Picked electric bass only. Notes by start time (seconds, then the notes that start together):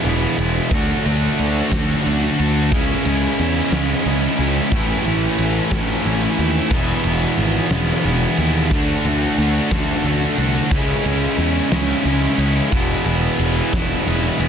0.05 E1
0.38 E1
0.71 D2
1.06 D2
1.40 D2
1.72 D2
2.06 D2
2.40 D2
2.72 C#2
3.05 C#2
3.39 E2
3.72 C#2
4.06 C#2
4.39 C#2
4.72 A1
5.06 A1
5.39 A1
5.71 A1
6.05 A1
6.39 D#2
6.70 E1
7.04 E1
7.37 G#1
7.70 E1
8.05 E1
8.38 D#2
8.71 D2
9.05 D2
9.38 D2
9.71 D2
10.04 D2
10.38 C2
10.71 C#2
11.04 C#2
11.38 E2
11.72 C#2
12.05 C#2
12.38 C#2
12.73 E1
13.06 E1
13.39 E1
13.73 E1
14.07 E1
14.39 E1